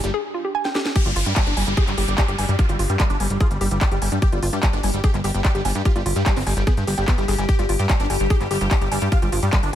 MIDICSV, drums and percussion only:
0, 0, Header, 1, 2, 480
1, 0, Start_track
1, 0, Tempo, 408163
1, 1124, Time_signature, 4, 2, 24, 8
1, 11466, End_track
2, 0, Start_track
2, 0, Title_t, "Drums"
2, 44, Note_on_c, 9, 42, 45
2, 162, Note_off_c, 9, 42, 0
2, 765, Note_on_c, 9, 38, 50
2, 882, Note_off_c, 9, 38, 0
2, 885, Note_on_c, 9, 38, 83
2, 1002, Note_off_c, 9, 38, 0
2, 1005, Note_on_c, 9, 38, 79
2, 1122, Note_off_c, 9, 38, 0
2, 1124, Note_on_c, 9, 36, 112
2, 1125, Note_on_c, 9, 42, 70
2, 1125, Note_on_c, 9, 49, 105
2, 1242, Note_off_c, 9, 36, 0
2, 1242, Note_off_c, 9, 42, 0
2, 1242, Note_off_c, 9, 49, 0
2, 1245, Note_on_c, 9, 42, 41
2, 1362, Note_off_c, 9, 42, 0
2, 1365, Note_on_c, 9, 46, 113
2, 1482, Note_off_c, 9, 46, 0
2, 1485, Note_on_c, 9, 42, 41
2, 1602, Note_off_c, 9, 42, 0
2, 1604, Note_on_c, 9, 36, 127
2, 1605, Note_on_c, 9, 39, 127
2, 1605, Note_on_c, 9, 42, 73
2, 1722, Note_off_c, 9, 36, 0
2, 1722, Note_off_c, 9, 39, 0
2, 1722, Note_off_c, 9, 42, 0
2, 1725, Note_on_c, 9, 42, 41
2, 1842, Note_off_c, 9, 42, 0
2, 1845, Note_on_c, 9, 46, 105
2, 1962, Note_off_c, 9, 46, 0
2, 1965, Note_on_c, 9, 42, 43
2, 2082, Note_off_c, 9, 42, 0
2, 2084, Note_on_c, 9, 36, 126
2, 2085, Note_on_c, 9, 42, 68
2, 2202, Note_off_c, 9, 36, 0
2, 2203, Note_off_c, 9, 42, 0
2, 2205, Note_on_c, 9, 39, 39
2, 2205, Note_on_c, 9, 42, 39
2, 2322, Note_off_c, 9, 39, 0
2, 2322, Note_off_c, 9, 42, 0
2, 2325, Note_on_c, 9, 46, 106
2, 2442, Note_off_c, 9, 46, 0
2, 2445, Note_on_c, 9, 42, 41
2, 2563, Note_off_c, 9, 42, 0
2, 2564, Note_on_c, 9, 36, 116
2, 2565, Note_on_c, 9, 39, 122
2, 2565, Note_on_c, 9, 42, 68
2, 2682, Note_off_c, 9, 36, 0
2, 2682, Note_off_c, 9, 39, 0
2, 2682, Note_off_c, 9, 42, 0
2, 2685, Note_on_c, 9, 42, 42
2, 2803, Note_off_c, 9, 42, 0
2, 2805, Note_on_c, 9, 46, 107
2, 2922, Note_off_c, 9, 46, 0
2, 2925, Note_on_c, 9, 42, 44
2, 3042, Note_off_c, 9, 42, 0
2, 3044, Note_on_c, 9, 36, 126
2, 3045, Note_on_c, 9, 42, 69
2, 3162, Note_off_c, 9, 36, 0
2, 3162, Note_off_c, 9, 42, 0
2, 3165, Note_on_c, 9, 42, 40
2, 3282, Note_off_c, 9, 42, 0
2, 3285, Note_on_c, 9, 46, 115
2, 3402, Note_off_c, 9, 46, 0
2, 3405, Note_on_c, 9, 42, 43
2, 3522, Note_off_c, 9, 42, 0
2, 3524, Note_on_c, 9, 36, 127
2, 3525, Note_on_c, 9, 39, 127
2, 3525, Note_on_c, 9, 42, 70
2, 3642, Note_off_c, 9, 36, 0
2, 3642, Note_off_c, 9, 39, 0
2, 3642, Note_off_c, 9, 42, 0
2, 3645, Note_on_c, 9, 42, 41
2, 3762, Note_off_c, 9, 42, 0
2, 3764, Note_on_c, 9, 46, 113
2, 3882, Note_off_c, 9, 46, 0
2, 3885, Note_on_c, 9, 42, 43
2, 4002, Note_off_c, 9, 42, 0
2, 4004, Note_on_c, 9, 36, 123
2, 4005, Note_on_c, 9, 42, 66
2, 4122, Note_off_c, 9, 36, 0
2, 4122, Note_off_c, 9, 42, 0
2, 4125, Note_on_c, 9, 42, 41
2, 4242, Note_off_c, 9, 42, 0
2, 4245, Note_on_c, 9, 46, 109
2, 4362, Note_off_c, 9, 46, 0
2, 4365, Note_on_c, 9, 42, 42
2, 4483, Note_off_c, 9, 42, 0
2, 4484, Note_on_c, 9, 36, 122
2, 4485, Note_on_c, 9, 39, 127
2, 4485, Note_on_c, 9, 42, 67
2, 4602, Note_off_c, 9, 36, 0
2, 4603, Note_off_c, 9, 39, 0
2, 4603, Note_off_c, 9, 42, 0
2, 4605, Note_on_c, 9, 42, 41
2, 4722, Note_off_c, 9, 42, 0
2, 4725, Note_on_c, 9, 46, 118
2, 4842, Note_off_c, 9, 46, 0
2, 4845, Note_on_c, 9, 42, 41
2, 4962, Note_off_c, 9, 42, 0
2, 4964, Note_on_c, 9, 36, 125
2, 4965, Note_on_c, 9, 42, 63
2, 5082, Note_off_c, 9, 36, 0
2, 5082, Note_off_c, 9, 42, 0
2, 5085, Note_on_c, 9, 42, 40
2, 5203, Note_off_c, 9, 42, 0
2, 5205, Note_on_c, 9, 46, 117
2, 5322, Note_off_c, 9, 46, 0
2, 5325, Note_on_c, 9, 42, 39
2, 5443, Note_off_c, 9, 42, 0
2, 5444, Note_on_c, 9, 36, 127
2, 5445, Note_on_c, 9, 39, 125
2, 5445, Note_on_c, 9, 42, 68
2, 5562, Note_off_c, 9, 36, 0
2, 5562, Note_off_c, 9, 39, 0
2, 5562, Note_off_c, 9, 42, 0
2, 5565, Note_on_c, 9, 42, 41
2, 5682, Note_off_c, 9, 42, 0
2, 5685, Note_on_c, 9, 46, 113
2, 5802, Note_off_c, 9, 46, 0
2, 5805, Note_on_c, 9, 42, 42
2, 5922, Note_off_c, 9, 42, 0
2, 5924, Note_on_c, 9, 36, 125
2, 5925, Note_on_c, 9, 42, 63
2, 6042, Note_off_c, 9, 36, 0
2, 6042, Note_off_c, 9, 42, 0
2, 6045, Note_on_c, 9, 39, 39
2, 6045, Note_on_c, 9, 42, 38
2, 6162, Note_off_c, 9, 39, 0
2, 6162, Note_off_c, 9, 42, 0
2, 6164, Note_on_c, 9, 46, 108
2, 6282, Note_off_c, 9, 46, 0
2, 6285, Note_on_c, 9, 42, 40
2, 6402, Note_off_c, 9, 42, 0
2, 6404, Note_on_c, 9, 36, 125
2, 6405, Note_on_c, 9, 39, 124
2, 6405, Note_on_c, 9, 42, 64
2, 6522, Note_off_c, 9, 36, 0
2, 6522, Note_off_c, 9, 39, 0
2, 6522, Note_off_c, 9, 42, 0
2, 6525, Note_on_c, 9, 42, 38
2, 6642, Note_off_c, 9, 42, 0
2, 6644, Note_on_c, 9, 46, 120
2, 6762, Note_off_c, 9, 46, 0
2, 6764, Note_on_c, 9, 42, 39
2, 6882, Note_off_c, 9, 42, 0
2, 6884, Note_on_c, 9, 36, 123
2, 6884, Note_on_c, 9, 42, 63
2, 7002, Note_off_c, 9, 36, 0
2, 7002, Note_off_c, 9, 42, 0
2, 7004, Note_on_c, 9, 42, 39
2, 7122, Note_off_c, 9, 42, 0
2, 7125, Note_on_c, 9, 46, 118
2, 7242, Note_off_c, 9, 46, 0
2, 7245, Note_on_c, 9, 42, 37
2, 7362, Note_off_c, 9, 42, 0
2, 7364, Note_on_c, 9, 36, 127
2, 7365, Note_on_c, 9, 39, 124
2, 7365, Note_on_c, 9, 42, 69
2, 7482, Note_off_c, 9, 36, 0
2, 7482, Note_off_c, 9, 39, 0
2, 7482, Note_off_c, 9, 42, 0
2, 7485, Note_on_c, 9, 39, 38
2, 7485, Note_on_c, 9, 46, 65
2, 7602, Note_off_c, 9, 39, 0
2, 7602, Note_off_c, 9, 46, 0
2, 7604, Note_on_c, 9, 46, 113
2, 7722, Note_off_c, 9, 46, 0
2, 7725, Note_on_c, 9, 42, 40
2, 7842, Note_off_c, 9, 42, 0
2, 7844, Note_on_c, 9, 36, 123
2, 7845, Note_on_c, 9, 42, 63
2, 7962, Note_off_c, 9, 36, 0
2, 7962, Note_off_c, 9, 42, 0
2, 7964, Note_on_c, 9, 42, 37
2, 8082, Note_off_c, 9, 42, 0
2, 8084, Note_on_c, 9, 46, 104
2, 8202, Note_off_c, 9, 46, 0
2, 8204, Note_on_c, 9, 42, 36
2, 8322, Note_off_c, 9, 42, 0
2, 8324, Note_on_c, 9, 36, 119
2, 8324, Note_on_c, 9, 39, 125
2, 8324, Note_on_c, 9, 42, 66
2, 8442, Note_off_c, 9, 36, 0
2, 8442, Note_off_c, 9, 39, 0
2, 8442, Note_off_c, 9, 42, 0
2, 8444, Note_on_c, 9, 42, 40
2, 8562, Note_off_c, 9, 42, 0
2, 8564, Note_on_c, 9, 46, 114
2, 8682, Note_off_c, 9, 46, 0
2, 8685, Note_on_c, 9, 42, 38
2, 8802, Note_off_c, 9, 42, 0
2, 8804, Note_on_c, 9, 36, 116
2, 8805, Note_on_c, 9, 42, 63
2, 8922, Note_off_c, 9, 36, 0
2, 8922, Note_off_c, 9, 42, 0
2, 8924, Note_on_c, 9, 42, 37
2, 9042, Note_off_c, 9, 42, 0
2, 9044, Note_on_c, 9, 46, 112
2, 9162, Note_off_c, 9, 46, 0
2, 9165, Note_on_c, 9, 42, 39
2, 9282, Note_off_c, 9, 42, 0
2, 9284, Note_on_c, 9, 36, 127
2, 9285, Note_on_c, 9, 39, 124
2, 9285, Note_on_c, 9, 42, 69
2, 9402, Note_off_c, 9, 36, 0
2, 9402, Note_off_c, 9, 39, 0
2, 9402, Note_off_c, 9, 42, 0
2, 9405, Note_on_c, 9, 42, 41
2, 9522, Note_off_c, 9, 42, 0
2, 9525, Note_on_c, 9, 46, 111
2, 9642, Note_off_c, 9, 46, 0
2, 9645, Note_on_c, 9, 42, 39
2, 9763, Note_off_c, 9, 42, 0
2, 9764, Note_on_c, 9, 36, 127
2, 9765, Note_on_c, 9, 42, 65
2, 9882, Note_off_c, 9, 36, 0
2, 9882, Note_off_c, 9, 42, 0
2, 9885, Note_on_c, 9, 39, 35
2, 9885, Note_on_c, 9, 42, 36
2, 10002, Note_off_c, 9, 39, 0
2, 10002, Note_off_c, 9, 42, 0
2, 10005, Note_on_c, 9, 46, 108
2, 10122, Note_off_c, 9, 46, 0
2, 10125, Note_on_c, 9, 42, 38
2, 10242, Note_off_c, 9, 42, 0
2, 10244, Note_on_c, 9, 36, 120
2, 10245, Note_on_c, 9, 39, 112
2, 10245, Note_on_c, 9, 42, 65
2, 10362, Note_off_c, 9, 36, 0
2, 10362, Note_off_c, 9, 39, 0
2, 10362, Note_off_c, 9, 42, 0
2, 10365, Note_on_c, 9, 42, 38
2, 10483, Note_off_c, 9, 42, 0
2, 10485, Note_on_c, 9, 46, 113
2, 10603, Note_off_c, 9, 46, 0
2, 10605, Note_on_c, 9, 42, 40
2, 10722, Note_off_c, 9, 42, 0
2, 10724, Note_on_c, 9, 36, 109
2, 10725, Note_on_c, 9, 42, 68
2, 10842, Note_off_c, 9, 36, 0
2, 10842, Note_off_c, 9, 42, 0
2, 10845, Note_on_c, 9, 42, 40
2, 10962, Note_off_c, 9, 42, 0
2, 10965, Note_on_c, 9, 46, 109
2, 11083, Note_off_c, 9, 46, 0
2, 11085, Note_on_c, 9, 42, 39
2, 11203, Note_off_c, 9, 42, 0
2, 11204, Note_on_c, 9, 36, 127
2, 11205, Note_on_c, 9, 39, 122
2, 11205, Note_on_c, 9, 42, 69
2, 11322, Note_off_c, 9, 36, 0
2, 11322, Note_off_c, 9, 39, 0
2, 11322, Note_off_c, 9, 42, 0
2, 11325, Note_on_c, 9, 42, 39
2, 11442, Note_off_c, 9, 42, 0
2, 11466, End_track
0, 0, End_of_file